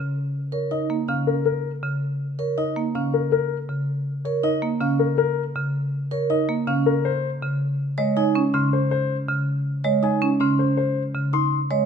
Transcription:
0.00 0.21 C#3 medium
0.52 0.77 A#4 medium
0.52 0.77 C#5 soft
0.71 0.95 D#4 medium
0.71 0.96 D#5 medium
0.90 1.14 A#3 medium
1.08 1.33 C#3 medium
1.08 1.33 C#4 medium
1.08 1.33 F5 medium
1.27 1.44 A#4 medium
1.46 1.70 A#4 medium
1.83 2.07 C#3 medium
2.39 2.63 A#4 medium
2.39 2.63 C#5 medium
2.58 2.82 D#4 medium
2.58 2.82 D#5 medium
2.76 3.01 A#3 medium
2.95 3.19 C#3 soft
2.95 3.19 C#4 medium
2.95 3.19 F5 medium
3.14 3.31 A#4 medium
3.32 3.56 A#4 medium
3.69 3.94 C#3 medium
4.25 4.50 A#4 medium
4.25 4.49 C#5 medium
4.43 4.68 D#4 medium
4.43 4.68 D#5 medium
4.62 4.87 A#3 medium
4.81 5.05 C#3 medium
4.81 5.05 C#4 medium
4.81 5.05 F5 medium
4.99 5.16 A#4 medium
5.18 5.43 A#4 medium
5.56 5.80 C#3 medium
6.11 6.36 A#4 medium
6.11 6.36 C#5 medium
6.30 6.54 D#4 medium
6.30 6.54 D#5 medium
6.49 6.73 A#3 medium
6.67 6.92 C#3 medium
6.67 6.92 C#4 medium
6.67 6.92 F5 medium
6.86 7.10 A#4 medium
7.05 7.29 C5 medium
7.42 7.66 C#3 medium
7.98 8.22 G#3 medium
7.98 8.22 C#5 medium
7.98 8.22 D#5 medium
8.17 8.41 D#4 medium
8.17 8.41 G#5 medium
8.35 8.60 C#4 medium
8.54 8.78 C#3 medium
8.54 8.78 C#4 medium
8.54 8.78 C6 medium
8.73 8.90 C5 medium
8.91 9.15 C5 medium
9.28 9.53 C#3 medium
9.84 10.09 G#3 medium
9.84 10.09 C#5 medium
9.84 10.09 D#5 medium
10.03 10.27 D#4 medium
10.03 10.27 G#5 medium
10.22 10.46 C#4 medium
10.40 10.65 C#3 medium
10.40 10.64 C#4 medium
10.40 10.65 C6 medium
10.59 10.76 C5 medium
10.77 11.02 C5 medium
11.15 11.39 C#3 medium
11.33 11.58 D#4 medium
11.33 11.58 C6 medium
11.71 11.85 G#3 medium
11.71 11.85 C#5 medium
11.71 11.85 D#5 medium

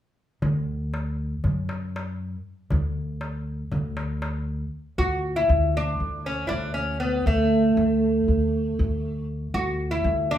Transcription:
0.42 1.33 D2 medium
0.42 darbuka dum medium
0.94 darbuka tek soft
1.44 2.34 F#2 medium
1.44 darbuka dum medium
1.69 darbuka tek soft
1.96 darbuka tek medium
2.70 3.62 D2 medium
2.70 darbuka dum medium
3.21 darbuka tek medium
3.72 4.62 D2 medium
3.72 darbuka dum medium
3.97 darbuka tek medium
4.22 darbuka tek medium
4.98 5.44 D2 medium
4.98 5.36 F#4 medium
5.36 5.76 E4 medium
5.49 5.94 D2 medium
5.77 6.23 D4 medium
6.00 6.45 D2 medium
6.26 6.45 C#4 medium
6.47 7.18 D2 medium
6.47 6.73 D4 medium
6.47 6.52 E4 medium
6.74 6.99 C#4 medium
7.00 7.26 B3 medium
7.26 7.71 D2 medium
7.26 9.25 A3 medium
7.77 8.22 D2 medium
8.28 8.73 D2 medium
8.79 9.47 D2 medium
9.54 9.99 D2 medium
9.54 9.91 F#4 medium
9.91 10.31 E4 medium
10.04 10.38 D2 medium
10.31 10.38 D4 medium

